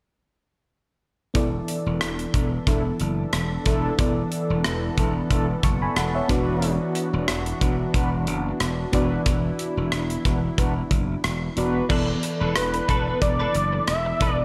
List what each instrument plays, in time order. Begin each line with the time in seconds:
1.34 slap bass E1, analog synth pad E3 B3 D4 A4, fm electric piano E3 B3 E4 A4 D5, kick, closed hi-hat
1.68 closed hi-hat
1.86 slap bass E1
2.01 slap bass E1, cross-stick, closed hi-hat
2.19 closed hi-hat
2.34 slap bass E1, analog polysynth D4 E4 A4, kick, closed hi-hat
2.67 slap bass E1, analog polysynth D4 E4 A4, kick, closed hi-hat
3.00 slap bass F#1, closed hi-hat
3.33 slap bass E1, cross-stick, closed hi-hat
3.66 slap bass E1, analog polysynth D4 E4 A4, kick, closed hi-hat
3.98 slap bass E1, fm electric piano E3 B3 E4 A4 D5, kick, closed hi-hat
4.32 closed hi-hat
4.50 slap bass E1
4.64 slap bass E1, cross-stick, closed hi-hat
4.98 slap bass E1, analog polysynth D4 E4 A4, kick, closed hi-hat
5.31 slap bass E1, analog polysynth D4 E4 A4, kick, closed hi-hat
5.63 slap bass F#1, fm electric piano A5 C#6, kick, closed hi-hat
5.82 fm electric piano G#5 B5
5.96 slap bass E1, fm electric piano F#5 A5, cross-stick, closed hi-hat
6.15 fm electric piano C#5 E5
6.28 slap bass E1, fm electric piano E3 B3 D4 F#4 D5, analog synth pad D4 F#4, analog polysynth D4 F#4 B4, kick, closed hi-hat
6.62 closed hi-hat
6.95 closed hi-hat
7.13 slap bass E1
7.28 slap bass E1, cross-stick, closed hi-hat
7.46 closed hi-hat
7.61 slap bass E1, analog polysynth D4 F#4 B4, kick, closed hi-hat
7.94 slap bass E1, analog polysynth D4 F#4 B4, kick, closed hi-hat
8.27 slap bass F#1, closed hi-hat
8.60 slap bass E1, cross-stick, closed hi-hat
8.92 slap bass E1, fm electric piano E3 B3 D4 F#4 D5, analog polysynth D4 F#4 B4, analog synth pad E4, kick, closed hi-hat
9.26 slap bass E1, kick, closed hi-hat
9.59 closed hi-hat
9.77 slap bass E1
9.92 slap bass E1, cross-stick, closed hi-hat
10.10 closed hi-hat
10.25 slap bass E1, analog polysynth D4 F#4 B4, kick, closed hi-hat
10.58 slap bass E1, analog polysynth D4 F#4 B4, kick, closed hi-hat
10.91 slap bass F#1, kick, closed hi-hat
11.24 slap bass E1, cross-stick, closed hi-hat
11.56 slap bass E1, fm electric piano B3 D4 F#4 D5, analog polysynth D4 F#4 B4, closed hi-hat
11.89 slap bass E1, fm electric piano E3 B3 E4 A4 D5, clean electric guitar D4 A4 B4, kick, crash
12.08 muted clean electric guitar stroke
12.22 muted clean electric guitar stroke, closed hi-hat
12.40 slap bass E1, clean electric guitar D4 A4 B4
12.56 slap bass E1, analog synth lead B4, cross-stick, closed hi-hat
12.74 muted clean electric guitar stroke, closed hi-hat
12.88 slap bass E1, clean electric guitar D4 A4 B4, kick, closed hi-hat
13.06 clean electric guitar D4 A4 B4
13.21 slap bass E1, analog synth lead D5, muted clean electric guitar stroke, kick, closed hi-hat
13.39 clean electric guitar D4 A4 B4
13.54 slap bass F#1, muted clean electric guitar stroke, closed hi-hat
13.73 muted clean electric guitar stroke
13.87 slap bass E1, analog synth lead E5, cross-stick, closed hi-hat
14.06 muted clean electric guitar stroke
14.20 slap bass E1, clean electric guitar D4 A4 B4, kick, closed hi-hat
14.34 analog synth lead D5, muted clean electric guitar stroke